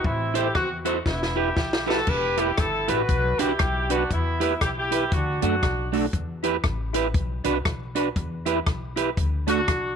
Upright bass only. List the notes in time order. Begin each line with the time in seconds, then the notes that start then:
0.05 A1
0.55 E2
1.06 E1
1.57 B1
2.08 E1
2.58 G1
2.89 A1
3.09 B1
3.40 C2
3.60 B1
4.11 E2
4.62 B1
5.12 D2
5.42 F#2
5.63 B1
6.14 E2
6.64 A1
7.15 B1
7.45 C2
7.66 B1
8.16 E2
8.67 B1
9.17 D2
9.69 B1